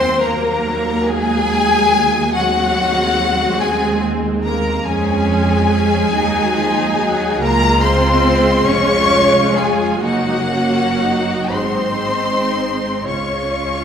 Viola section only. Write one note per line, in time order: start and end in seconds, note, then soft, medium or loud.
0.00 2.32 F#3 medium
0.00 2.31 A#3 medium
2.36 4.83 G#3 medium
2.36 4.83 C4 medium
4.87 6.11 G#3 medium
4.87 6.11 C#4 medium
6.15 6.58 F#3 medium
6.15 7.41 D#4 medium
6.57 6.99 F3 medium
7.00 7.41 F#3 medium
7.42 10.03 G#3 medium
7.42 8.65 F4 medium
8.68 10.00 F4 medium
10.03 11.51 A#3 medium
10.03 10.51 D#4 medium
10.51 11.01 C#4 medium
11.02 11.53 D#4 medium
11.53 13.06 G#3 soft
11.53 13.05 D#4 medium
13.07 13.84 G#3 soft
13.07 13.84 F4 soft